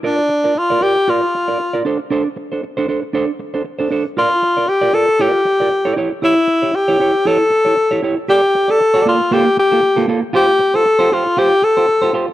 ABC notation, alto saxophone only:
X:1
M:4/4
L:1/16
Q:"Swing 16ths" 1/4=117
K:Aphr
V:1 name="Alto saxophone"
D4 F2 G2 F6 z2 | z16 | F4 G2 A2 G6 z2 | E4 G4 A6 z2 |
G3 A3 F2 G2 G4 z2 | G3 A3 F2 G2 A4 z2 |]